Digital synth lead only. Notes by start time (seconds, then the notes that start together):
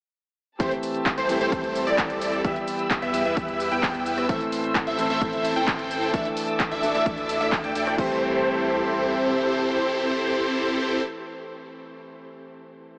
0.60 C5
1.18 C5
1.41 C5
1.87 D5
2.44 E5
3.02 E5
3.25 E5
3.71 G5
4.29 E5
4.87 E5
5.10 E5
5.56 G5
6.14 E5
6.71 E5
6.95 E5
7.41 E5
7.64 G5
7.75 G5
7.98 C5